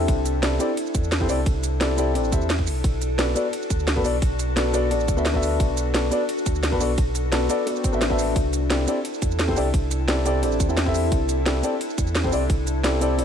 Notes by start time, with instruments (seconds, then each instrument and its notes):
Already playing: felt piano C4 E4 G4 A4 E5, ambient pad D4 E4 A4
0.08 sub bass C2, kick, closed hi-hat, ride
0.26 closed hi-hat, shaker
0.42 felt piano C4 E4 G4 A4 D5, snare, closed hi-hat, ride
0.59 felt piano C4 E4 G4 A4 D5, closed hi-hat, shaker
0.77 closed hi-hat, ride
0.86 shaker
0.95 sub bass E2, kick, closed hi-hat, shaker
1.04 shaker
1.12 snare, closed hi-hat, ride
1.20 felt piano C4 E4 G4 A4 C5, kick
1.28 sub bass C2, felt piano C4 E4 G4 A4 D5, open hi-hat, shaker
1.46 sub bass C2, kick, closed hi-hat, ride
1.64 closed hi-hat, shaker
1.80 felt piano C4 E4 G4 A4 D5, snare, closed hi-hat, ride
1.97 felt piano C4 E4 G4 A4 D5, closed hi-hat, shaker
2.14 sub bass A1, felt piano C4 E4 G4 A4 D5, closed hi-hat, ride
2.24 shaker
2.31 sub bass E2, felt piano C4 E4 G4 A4 E5, kick, closed hi-hat, shaker
2.42 shaker
2.50 snare, closed hi-hat, ride
2.59 kick
2.67 sub bass B1, ambient pad D4 F#4, open hi-hat, shaker
2.84 sub bass B1, kick, closed hi-hat, ride
3.02 closed hi-hat, shaker
3.18 felt piano B3 D4 F#4 A4 D5, snare, closed hi-hat, ride
3.35 felt piano B3 D4 F#4 A4 D5, closed hi-hat, shaker
3.53 closed hi-hat, ride
3.62 shaker
3.70 sub bass D2, kick, closed hi-hat, shaker
3.80 shaker
3.88 snare, closed hi-hat, ride
3.96 felt piano B3 D4 F#4 A4 B4, kick
4.04 sub bass B1, felt piano B3 D4 F#4 A4 D5, open hi-hat, shaker
4.22 sub bass B1, kick, closed hi-hat, ride
4.39 closed hi-hat, shaker
4.56 felt piano B3 D4 F#4 A4 D5, snare, closed hi-hat, ride
4.73 felt piano B3 D4 F#4 A4 D5, closed hi-hat, shaker
4.90 sub bass A1, felt piano B3 D4 F#4 A4 D5, closed hi-hat, ride
5.00 shaker
5.08 sub bass D2, kick, closed hi-hat, shaker
5.16 felt piano B3 D4 F#4 A4 E5, shaker
5.25 snare, closed hi-hat, ride
5.33 felt piano B3 D4 F#4 A4 E5, kick
5.43 open hi-hat, shaker
5.60 sub bass B1, kick, closed hi-hat, ride
5.77 closed hi-hat, shaker
5.94 felt piano B3 D4 F#4 A4 D5, snare, closed hi-hat, ride
6.11 felt piano B3 D4 F#4 A4 D5, closed hi-hat, shaker
6.29 closed hi-hat, ride
6.38 shaker
6.46 sub bass D2, kick, closed hi-hat, shaker
6.55 shaker
6.63 snare, closed hi-hat, ride
6.72 felt piano B3 D4 F#4 A4 B4, kick
6.80 sub bass B1, felt piano B3 D4 F#4 A4 D5, open hi-hat, shaker
6.98 sub bass B1, kick, closed hi-hat, ride
7.15 closed hi-hat, shaker
7.32 felt piano B3 D4 F#4 A4 D5, snare, closed hi-hat, ride
7.49 felt piano B3 D4 F#4 A4 D5, closed hi-hat, shaker
7.66 felt piano B3 D4 F#4 A4 D5, closed hi-hat, ride, swell
7.76 shaker
7.84 kick, closed hi-hat, shaker
7.92 sub bass A1, felt piano B3 D4 F#4 A4 E5, shaker
8.01 snare, closed hi-hat, ride
8.10 felt piano B3 D4 F#4 A4 E5, kick
8.19 open hi-hat, shaker
8.36 sub bass C2, ambient pad E4 A4, kick, closed hi-hat, ride
8.53 closed hi-hat, shaker
8.70 felt piano C4 E4 G4 A4 D5, snare, closed hi-hat, ride
8.87 felt piano C4 E4 G4 A4 D5, closed hi-hat, shaker
9.05 closed hi-hat, ride
9.14 shaker
9.22 sub bass E2, kick, closed hi-hat, shaker
9.31 shaker
9.39 snare, closed hi-hat, ride
9.48 felt piano C4 E4 G4 A4 C5, kick
9.56 sub bass C2, felt piano C4 E4 G4 A4 D5, open hi-hat, shaker
9.74 sub bass C2, kick, closed hi-hat, ride
9.91 closed hi-hat, shaker
10.07 felt piano C4 E4 G4 A4 D5, snare, closed hi-hat, ride
10.25 felt piano C4 E4 G4 A4 D5, closed hi-hat, shaker
10.42 sub bass A1, felt piano C4 E4 G4 A4 D5, closed hi-hat, ride
10.52 shaker
10.60 sub bass E2, kick, closed hi-hat, shaker
10.68 felt piano C4 E4 G4 A4 E5, shaker
10.77 snare, closed hi-hat, ride
10.85 felt piano C4 E4 G4 A4 E5, kick
10.95 open hi-hat, shaker
11.12 sub bass C2, kick, closed hi-hat, ride
11.29 closed hi-hat, shaker
11.45 felt piano C4 E4 G4 A4 D5, snare, closed hi-hat, ride
11.63 felt piano C4 E4 G4 A4 D5, closed hi-hat, shaker
11.81 closed hi-hat, ride
11.90 shaker
11.98 sub bass E2, kick, closed hi-hat, shaker
12.07 shaker
12.15 snare, closed hi-hat, ride
12.23 felt piano C4 E4 G4 A4 C5, kick
12.31 sub bass C2, felt piano C4 E4 G4 A4 D5, open hi-hat, shaker
12.50 sub bass C2, kick, closed hi-hat, ride
12.67 closed hi-hat, shaker
12.83 felt piano C4 E4 G4 A4 D5, snare, closed hi-hat, ride
13.00 felt piano C4 E4 G4 A4 D5, closed hi-hat, shaker
13.18 sub bass A1, felt piano C4 E4 G4 A4 D5, closed hi-hat, ride